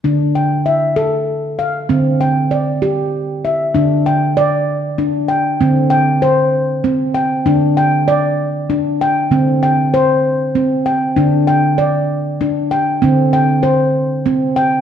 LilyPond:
<<
  \new Staff \with { instrumentName = "Handpan" } { \time 6/8 \key c \mixolydian \tempo 4. = 65 << { r8 g''8 e''4. f''8~ | f''8 g''8 d''4. e''8~ | e''8 g''4. r8 g''8~ | g''8 g''4. r8 g''8~ |
g''8 g''4. r8 g''8~ | g''8 g''4. r8 g''8~ | g''8 g''4. r8 g''8~ | g''8 g''4. r8 g''8 | } \\ { d'4 r8 a'4 r8 | c'4 r8 g'4 r8 | d'4 d''4 d'4 | c'4 c''4 c'4 |
d'4 d''4 d'4 | c'4 c''4 c'4 | d'4 d''4 d'4 | c'4 c''4 c'4 | } >> }
  \new Staff \with { instrumentName = "Handpan" } { \clef bass \time 6/8 \key c \mixolydian d2. | d2. | d2. | d2. |
d2. | d2. | d2. | d2. | }
>>